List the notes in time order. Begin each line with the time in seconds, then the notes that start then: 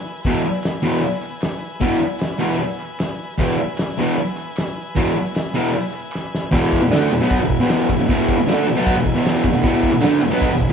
Already playing: B4 E5 G#5
0.23 E2 B2 B4 E5 G#5, kick, open hi-hat
0.27 E3
0.64 snare, clap, open hi-hat
0.83 E2 B2 E3
1.04 open hi-hat
1.22 clap
1.42 snare, clap, open hi-hat
1.80 E2 B2 E3, kick, open hi-hat
2.20 snare, clap, open hi-hat
2.39 E2 B2 E3
2.59 open hi-hat
2.80 clap
2.99 snare, clap, open hi-hat
3.38 E2 B2 E3 B4 E5 G#5, kick, open hi-hat
3.78 snare, clap, open hi-hat
3.98 E2 B2 E3
4.18 open hi-hat
4.37 clap
4.57 snare, clap, open hi-hat
4.96 E2 B2 E3, kick, open hi-hat
5.35 snare, clap, open hi-hat
5.55 E2 B2 E3
5.75 open hi-hat
5.93 clap
6.12 snare, clap
6.35 snare
6.51 E2 B2 E3 B4 E5 G#5, kick, crash
6.73 kick
6.81 E2 B2
6.91 D3 A3 D4, snare, crash
7.11 E2 B2
7.21 B2 F#3 B3
7.30 kick, crash
7.41 E2 B2
7.50 kick
7.60 E2 B2 E3
7.69 snare, crash
7.89 E2 B2, kick
7.99 E2 B2
8.08 E2 B2 E3, kick, crash
8.29 kick
8.38 E2 B2
8.47 D3 A3 D4, snare, crash
8.67 E2 B2
8.75 B2 F#3 B3
8.87 kick, crash
8.95 E2 B2
9.06 kick
9.14 E2 B2 E3
9.25 snare, crash
9.44 E2 B2, kick
9.53 E2 B2
9.62 E2 B2 E3 B4 E5 G#5, kick, crash
9.83 kick
9.93 E2 B2
10.01 D3 A3 D4, snare, clap, crash
10.21 E2 B2, clap
10.31 B2 F#3 B3
10.42 kick, crash
10.50 E2 B2
10.62 kick
10.69 E2